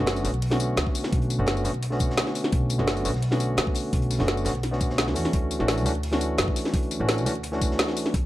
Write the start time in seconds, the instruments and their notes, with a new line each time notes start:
Already playing: tine electric piano D3
0.00 upright bass F#1, tine electric piano A3 B3 C#4 F#4
0.07 snare, closed hi-hat
0.16 closed hi-hat, tambourine
0.24 upright bass B1, tine electric piano D3 A3 B3 C#4 F#4, closed hi-hat, open hi-hat, tambourine
0.34 closed hi-hat
0.42 closed hi-hat, open hi-hat
0.50 tine electric piano D3 A3 B3 C#4 F#4, snare
0.60 closed hi-hat, tambourine
0.77 upright bass D2, snare, closed hi-hat
0.87 kick
0.95 closed hi-hat, open hi-hat, tambourine
1.03 snare
1.12 upright bass B1, kick, closed hi-hat
1.22 closed hi-hat
1.30 closed hi-hat, tambourine
1.38 upright bass F#1, tine electric piano D3 A3 B3 C#4 F#4
1.47 snare, closed hi-hat
1.57 closed hi-hat, tambourine
1.64 upright bass B1, tine electric piano D3 A3 B3 C#4 F#4, closed hi-hat, open hi-hat, tambourine
1.74 closed hi-hat
1.83 closed hi-hat
1.90 tine electric piano D3 A3 B3 C#4 F#4, snare
1.99 kick, closed hi-hat, tambourine
2.10 snare
2.18 snare, closed hi-hat
2.27 snare
2.35 closed hi-hat, open hi-hat, tambourine
2.44 snare
2.52 upright bass B1, kick, closed hi-hat
2.70 closed hi-hat, tambourine
2.78 upright bass F#1, tine electric piano D3 A3 B3 C#4 F#4, snare
2.87 snare, closed hi-hat
2.97 closed hi-hat, tambourine
3.04 upright bass B1, tine electric piano D3 A3 B3 C#4 F#4, closed hi-hat, open hi-hat, tambourine
3.14 snare, closed hi-hat
3.22 closed hi-hat, open hi-hat
3.30 tine electric piano D3 A3 B3 C#4 F#4, snare
3.40 closed hi-hat, tambourine
3.57 upright bass D2, snare, closed hi-hat
3.67 kick
3.75 closed hi-hat, open hi-hat, tambourine
3.93 upright bass B1, kick, closed hi-hat
4.02 closed hi-hat
4.11 closed hi-hat, open hi-hat, tambourine
4.19 upright bass F#1, tine electric piano D3 A3 B3 C#4 F#4, snare
4.28 snare, closed hi-hat
4.37 closed hi-hat, tambourine
4.45 upright bass B1, tine electric piano D3 A3 B3 C#4 F#4, snare, closed hi-hat, open hi-hat, tambourine
4.55 closed hi-hat
4.63 snare, closed hi-hat
4.71 tine electric piano D3 A3 B3 C#4 F#4, snare
4.80 kick, closed hi-hat, tambourine
4.90 snare
4.98 snare, closed hi-hat
5.07 snare
5.14 upright bass E2, tine electric piano E3 A3 C#4 D4 F#4, closed hi-hat, open hi-hat, tambourine
5.25 snare
5.33 upright bass D2, kick, closed hi-hat
5.51 closed hi-hat, tambourine
5.59 upright bass A1, tine electric piano E3 A3 C#4 D4 F#4, snare
5.68 snare, closed hi-hat
5.78 closed hi-hat, tambourine
5.85 upright bass D2, tine electric piano E3 A3 C#4 D4 F#4, closed hi-hat, open hi-hat, tambourine
5.95 closed hi-hat
6.03 closed hi-hat, open hi-hat
6.11 tine electric piano E3 A3 C#4 D4 F#4, snare
6.21 closed hi-hat, tambourine
6.38 upright bass F#2, snare, closed hi-hat
6.48 kick
6.56 closed hi-hat, open hi-hat, tambourine
6.65 snare
6.74 upright bass D2, kick, closed hi-hat
6.91 closed hi-hat, tambourine
6.99 upright bass A1, tine electric piano E3 A3 C#4 D4 F#4
7.09 snare, closed hi-hat
7.18 closed hi-hat, tambourine
7.25 upright bass D2, tine electric piano E3 A3 C#4 D4 F#4, closed hi-hat, open hi-hat, tambourine
7.35 closed hi-hat
7.43 closed hi-hat
7.52 tine electric piano E3 A3 C#4 D4 F#4, snare
7.61 kick, closed hi-hat, tambourine
7.71 snare
7.79 snare, closed hi-hat
7.88 snare
7.97 closed hi-hat, open hi-hat, tambourine
8.06 snare
8.14 upright bass E2, kick, closed hi-hat